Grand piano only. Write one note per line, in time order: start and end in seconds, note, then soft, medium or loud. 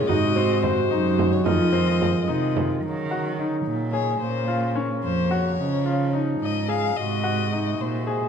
0.09 0.28 D#4 medium
0.36 0.75 C4 medium
0.91 1.30 D#4 medium
1.45 1.65 D#4 medium
1.73 2.12 C4 medium
2.28 2.67 D#4 medium
3.11 3.31 F#4 medium
3.38 3.78 D#4 medium
3.93 4.13 G#4 medium
4.48 4.68 F4 medium
4.75 5.15 C#4 medium
5.31 5.50 F#4 medium
5.86 6.05 F4 medium
6.13 6.53 D#4 medium
6.68 6.88 G#4 medium
7.23 7.43 F#4 medium
7.52 7.91 D#4 medium
8.07 8.26 G#4 medium